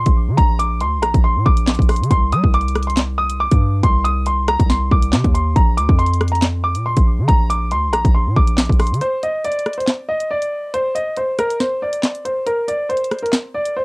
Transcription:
Already playing: grand piano C6
0.06 808-style bass A#1, kick, closed hi-hat
0.28 808-style bass D3
0.37 808-style bass A#1, grand piano A#5, kick, closed hi-hat
0.59 grand piano D6, closed hi-hat
0.81 808-style bass D2, grand piano C6, closed hi-hat
0.98 808-style bass A#1
1.02 grand piano A#5, cross-stick, closed hi-hat
1.14 808-style bass A#1, kick, closed hi-hat
1.24 grand piano C6
1.36 808-style bass A#2
1.46 808-style bass A#1, grand piano D6, kick
1.57 closed hi-hat
1.67 snare, clap, closed hi-hat
1.75 closed hi-hat
1.79 808-style bass A#1, kick, closed hi-hat
1.89 grand piano C6, cross-stick, closed hi-hat, open hi-hat
1.96 closed hi-hat
2.00 808-style bass D3, closed hi-hat
2.11 808-style bass C2, grand piano C6, kick, closed hi-hat
2.32 808-style bass G3, grand piano D#6, closed hi-hat
2.44 808-style bass C2, kick
2.54 grand piano D6, closed hi-hat
2.61 closed hi-hat
2.68 closed hi-hat
2.75 cross-stick, closed hi-hat
2.83 closed hi-hat
2.87 grand piano C6, closed hi-hat
2.97 snare, clap
3.18 grand piano D#6
3.30 closed hi-hat
3.40 grand piano D6
3.51 808-style bass G2, kick, closed hi-hat
3.83 808-style bass C2, grand piano C6, kick, closed hi-hat
4.04 grand piano D#6, closed hi-hat
4.26 grand piano C6, closed hi-hat
4.48 grand piano A#5, cross-stick, closed hi-hat
4.60 808-style bass C2, kick, closed hi-hat
4.70 grand piano C6, snare
4.91 808-style bass C2, grand piano D6, kick
5.02 closed hi-hat
5.13 808-style bass C3, snare, clap, closed hi-hat
5.24 808-style bass D#2, kick, closed hi-hat
5.34 grand piano C6, closed hi-hat
5.56 808-style bass A#1, grand piano A#5, kick, closed hi-hat
5.77 808-style bass D2, grand piano D6, closed hi-hat
5.89 808-style bass F2, kick
5.99 grand piano C6, closed hi-hat
6.06 closed hi-hat
6.14 closed hi-hat
6.21 cross-stick, closed hi-hat
6.28 grand piano A#5, closed hi-hat
6.35 closed hi-hat
6.42 snare, clap
6.64 grand piano D6
6.75 808-style bass A#2, closed hi-hat
6.86 grand piano C6
6.97 808-style bass A#1, kick, closed hi-hat
7.18 808-style bass D3
7.28 808-style bass A#1, grand piano A#5, kick, closed hi-hat
7.50 grand piano D6, closed hi-hat
7.71 808-style bass D2, grand piano C6, closed hi-hat
7.88 808-style bass A#1
7.93 grand piano A#5, cross-stick, closed hi-hat
8.05 808-style bass A#1, kick, closed hi-hat
8.15 grand piano C6
8.26 808-style bass A#2
8.36 808-style bass A#1, grand piano D6, kick
8.48 closed hi-hat
8.58 snare, clap, closed hi-hat
8.65 closed hi-hat
8.70 808-style bass A#1, kick, closed hi-hat
8.80 grand piano C6, cross-stick, closed hi-hat, open hi-hat
8.87 closed hi-hat
8.91 808-style bass D3, closed hi-hat
9.01 grand piano C5, closed hi-hat
9.23 grand piano D#5, closed hi-hat
9.44 grand piano D5, closed hi-hat
9.52 closed hi-hat
9.59 closed hi-hat
9.66 cross-stick, closed hi-hat
9.73 closed hi-hat
9.78 grand piano C5, closed hi-hat
9.88 snare, clap
10.09 grand piano D#5
10.20 closed hi-hat
10.31 grand piano D5
10.42 closed hi-hat
10.74 grand piano C5, closed hi-hat
10.95 grand piano D#5, closed hi-hat
11.17 grand piano C5, closed hi-hat
11.39 grand piano A#4, cross-stick, closed hi-hat
11.50 closed hi-hat
11.60 grand piano C5, snare
11.82 grand piano D5
11.93 closed hi-hat
12.03 snare, clap, closed hi-hat
12.15 closed hi-hat
12.25 grand piano C5, closed hi-hat
12.46 grand piano A#4, closed hi-hat
12.68 grand piano D5, closed hi-hat
12.89 grand piano C5, closed hi-hat
12.97 closed hi-hat
13.04 closed hi-hat
13.11 cross-stick, closed hi-hat
13.19 grand piano A#4, closed hi-hat
13.26 closed hi-hat
13.33 snare, clap
13.54 grand piano D5
13.66 closed hi-hat
13.77 grand piano C5

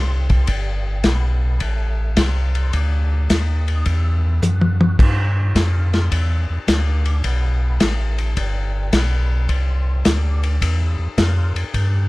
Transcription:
Already playing: tonewheel organ C2
0.30 kick, ride
0.47 tonewheel organ G1, kick, ride
1.04 tonewheel organ B1, kick, snare, hi-hat pedal, ride
1.60 tonewheel organ A1, kick, ride
2.17 tonewheel organ C2, kick, snare, hi-hat pedal, ride
2.55 ride
2.73 tonewheel organ D2, kick, ride
3.30 tonewheel organ D#2, kick, snare, hi-hat pedal, ride
3.68 ride
3.86 tonewheel organ E2, kick, ride
4.42 tonewheel organ F#2, hi-hat pedal, high tom
4.61 high tom
4.81 high tom
4.99 tonewheel organ G2, kick, crash
5.55 tonewheel organ F2, kick, snare, hi-hat pedal, ride
5.93 snare, ride
6.11 tonewheel organ E2, kick, ride
6.50 tonewheel organ E2
6.67 tonewheel organ D2, kick, snare, hi-hat pedal, ride
7.05 ride
7.24 tonewheel organ B1, kick, ride
7.80 tonewheel organ A1, kick, snare, hi-hat pedal, ride
8.18 ride
8.37 tonewheel organ G1, kick, ride
8.93 tonewheel organ B1, kick, snare, hi-hat pedal, ride
9.49 tonewheel organ C2, kick, ride
10.05 tonewheel organ D2, kick, snare, hi-hat pedal, ride
10.44 ride
10.61 tonewheel organ E2, kick, ride
10.99 tonewheel organ E2
11.18 tonewheel organ F2, kick, snare, hi-hat pedal, ride
11.55 tonewheel organ F2, ride
11.74 tonewheel organ G2, kick, ride

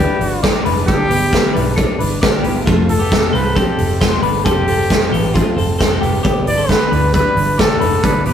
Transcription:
Already playing: trumpet G4
0.00 twelve-string acoustic guitar G3 D4 E4 B4
0.21 fingered electric bass G1, twelve-string acoustic guitar D4 E4 B4, open hi-hat
0.43 twelve-string acoustic guitar G3 D4 E4 B4, clean electric guitar G4 D5, kick, snare, closed hi-hat
0.65 fingered electric bass F1, twelve-string acoustic guitar D4 E4 B4, open hi-hat
0.87 fingered electric bass G1, twelve-string acoustic guitar G3 D4 E4 B4, trumpet G4, clean electric guitar A4, kick, closed hi-hat
1.10 clean electric guitar B3 G4, twelve-string acoustic guitar D4 E4 B4, open hi-hat
1.32 twelve-string acoustic guitar G3 D4 E4 B4, kick, snare, closed hi-hat
1.55 fingered electric bass B1, twelve-string acoustic guitar D4 E4 B4, open hi-hat
1.76 twelve-string acoustic guitar G3 D4 E4 B4, clean electric guitar A4, kick, closed hi-hat
1.99 fingered electric bass G1, twelve-string acoustic guitar D4 E4 B4, open hi-hat
2.21 fingered electric bass G1, twelve-string acoustic guitar G3 D4 E4 B4, clean electric guitar G4 D5, kick, snare, closed hi-hat
2.43 fingered electric bass G1, clean electric guitar B3 G4, twelve-string acoustic guitar D4 E4 B4, open hi-hat
2.67 fingered electric bass F1, twelve-string acoustic guitar F3 G3 C4 F4 A4, clean electric guitar A3, kick, closed hi-hat
2.88 twelve-string acoustic guitar C4 F4 A4, trumpet A4, open hi-hat
2.99 clean electric guitar B3 G4
3.11 twelve-string acoustic guitar G3 C4 F4 A4, kick, snare, closed hi-hat
3.33 fingered electric bass C2, twelve-string acoustic guitar C4 F4 A4, trumpet B4, open hi-hat
3.55 twelve-string acoustic guitar F3 G3 C4 F4 A4, trumpet G4, kick, closed hi-hat
3.77 fingered electric bass F1, twelve-string acoustic guitar C4 F4 A4, open hi-hat
4.01 twelve-string acoustic guitar G3 C4 F4 A4, clean electric guitar C5, kick, snare, closed hi-hat
4.22 fingered electric bass G1, twelve-string acoustic guitar C4 F4 A4, clean electric guitar D4 B4, open hi-hat
4.44 fingered electric bass F1, twelve-string acoustic guitar F3 G3 C4 F4 A4, trumpet G4, kick, closed hi-hat
4.67 twelve-string acoustic guitar C4 F4 A4, open hi-hat
4.89 twelve-string acoustic guitar G3 C4 F4 A4, kick, snare, closed hi-hat
5.11 fingered electric bass A1, clean electric guitar B3 G4, twelve-string acoustic guitar C4 F4 A4, open hi-hat
5.33 twelve-string acoustic guitar F3 G3 C4 F4 A4, clean electric guitar A3, kick, closed hi-hat
5.56 fingered electric bass F1, twelve-string acoustic guitar C4 F4 A4, open hi-hat
5.78 fingered electric bass F1, twelve-string acoustic guitar G3 C4 F4 A4, kick, snare, closed hi-hat
6.01 fingered electric bass F1, clean electric guitar B3 G4, twelve-string acoustic guitar C4 F4 A4, open hi-hat
6.23 fingered electric bass G1, twelve-string acoustic guitar G3 D4 E4 B4, clean electric guitar B3 G4, kick, closed hi-hat
6.46 twelve-string acoustic guitar D4 E4 B4, trumpet D5, open hi-hat
6.57 clean electric guitar C4 A4
6.69 twelve-string acoustic guitar G3 D4 E4 B4, trumpet B4, kick, snare, closed hi-hat
6.91 fingered electric bass D2, twelve-string acoustic guitar D4 E4 B4, open hi-hat
7.13 twelve-string acoustic guitar G3 D4 E4 B4, trumpet B4, kick, closed hi-hat
7.36 fingered electric bass G1, twelve-string acoustic guitar D4 E4 B4, open hi-hat
7.58 twelve-string acoustic guitar G3 D4 E4 B4, clean electric guitar G4 D5, trumpet A4, kick, snare, closed hi-hat
7.81 fingered electric bass F1, twelve-string acoustic guitar D4 E4 B4, open hi-hat
8.02 fingered electric bass G1, twelve-string acoustic guitar G3 D4 E4 B4, clean electric guitar A4, trumpet B4, kick, closed hi-hat
8.25 clean electric guitar B3 G4, twelve-string acoustic guitar D4 E4 B4, trumpet B4, open hi-hat

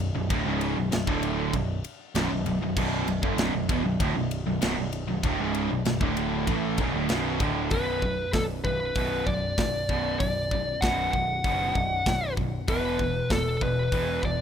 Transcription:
Already playing: picked electric bass B0
0.15 picked electric bass B0, distorted electric guitar B1 F#2
0.30 picked electric bass D1, distorted electric guitar D2 A2, kick, ride
0.45 picked electric bass C#1, distorted electric guitar C#2 G#2 C#3
0.61 ride
0.77 picked electric bass B0, distorted electric guitar B1 F#2
0.92 picked electric bass B0, distorted electric guitar B1 F#2, snare, ride
1.07 picked electric bass D1, distorted electric guitar D2 A2 D3, kick
1.23 ride
1.53 picked electric bass B0, distorted electric guitar B1 F#2, kick, ride
1.84 ride
2.15 picked electric bass B0, distorted electric guitar B1 F#2, snare, ride
2.31 picked electric bass B0, distorted electric guitar B1 F#2
2.46 picked electric bass B0, distorted electric guitar B1 F#2, ride
2.61 picked electric bass B0, distorted electric guitar B1 F#2
2.77 picked electric bass B0, distorted electric guitar B1 F#2 B2, kick, crash
3.06 picked electric bass B0, distorted electric guitar B1 F#2, ride
3.22 picked electric bass G1, distorted electric guitar G2 D3, kick
3.37 picked electric bass B0, distorted electric guitar B1 F#2, snare, ride
3.52 picked electric bass B0, distorted electric guitar B1 F#2
3.69 picked electric bass E1, distorted electric guitar E2 B2, kick, ride
3.83 picked electric bass B0, distorted electric guitar B1 F#2
4.00 picked electric bass D1, distorted electric guitar D2 A2, kick, ride
4.15 picked electric bass B0, distorted electric guitar B1 F#2
4.31 ride
4.46 picked electric bass B0, distorted electric guitar B1 F#2
4.61 picked electric bass B0, distorted electric guitar B1 F#2, snare, ride
4.77 picked electric bass B0, distorted electric guitar B1 F#2
4.93 ride
5.07 picked electric bass B0, distorted electric guitar B1 F#2
5.23 picked electric bass D1, distorted electric guitar D2 A2, kick, ride
5.39 picked electric bass C#1, distorted electric guitar C#2 G#2 C#3
5.54 ride
5.70 picked electric bass B0, distorted electric guitar B1 F#2
5.85 picked electric bass B0, distorted electric guitar B1 F#2, snare, ride
6.01 picked electric bass D1, distorted electric guitar D2 A2 D3, kick
6.17 ride
6.47 picked electric bass A1, distorted electric guitar A2 E3 A3, kick, ride
6.78 picked electric bass B0, distorted electric guitar B1 F#2, kick, ride
6.94 picked electric bass D1, distorted electric guitar D2 A2
7.09 picked electric bass B0, distorted electric guitar B1 F#2 B2, snare, ride
7.40 picked electric bass D1, distorted electric guitar D2 A2 D3, kick, ride
7.70 picked electric bass B0, distorted electric guitar B1 F#2 B2, lead electric guitar B4, kick, open hi-hat
8.02 distorted electric guitar B1 F#2, kick
8.33 picked electric bass B0, distorted electric guitar B1 F#2, lead electric guitar A4, kick, snare, open hi-hat
8.64 picked electric bass B0, distorted electric guitar B1 F#2, lead electric guitar B4, kick
8.95 picked electric bass B0, distorted electric guitar B1 F#2 B2, kick, open hi-hat
9.26 picked electric bass B0, distorted electric guitar B1 F#2, lead electric guitar D5, kick
9.58 picked electric bass B0, distorted electric guitar B1 F#2, kick, snare, open hi-hat
9.89 picked electric bass B0, distorted electric guitar B1 F#2 B2, kick
10.19 picked electric bass B0, distorted electric guitar B1 F#2, lead electric guitar D5, kick, open hi-hat
10.51 distorted electric guitar B1 F#2, kick
10.81 picked electric bass B0, distorted electric guitar B1 F#2 B2, lead electric guitar F#5, kick, snare, open hi-hat
11.11 picked electric bass B0, distorted electric guitar B1 F#2, lead electric guitar F#5, kick
11.44 picked electric bass F#1, distorted electric guitar B1 F#2 B2, kick, open hi-hat
11.75 picked electric bass B0, distorted electric guitar B1 F#2, kick
12.06 picked electric bass B0, distorted electric guitar B1 F#2, kick, snare, open hi-hat
12.36 distorted electric guitar B1 F#2, kick
12.68 picked electric bass E1, distorted electric guitar E2 B2 E3, lead electric guitar B4, kick, open hi-hat
12.99 distorted electric guitar E2 B2, kick
13.30 picked electric bass E1, distorted electric guitar E2 B2, lead electric guitar A4, kick, snare, open hi-hat
13.61 picked electric bass E1, distorted electric guitar E2 B2, lead electric guitar B4, kick
13.92 picked electric bass E1, distorted electric guitar E2 B2 E3, kick, open hi-hat
14.23 picked electric bass E1, distorted electric guitar E2 B2, lead electric guitar D5, kick

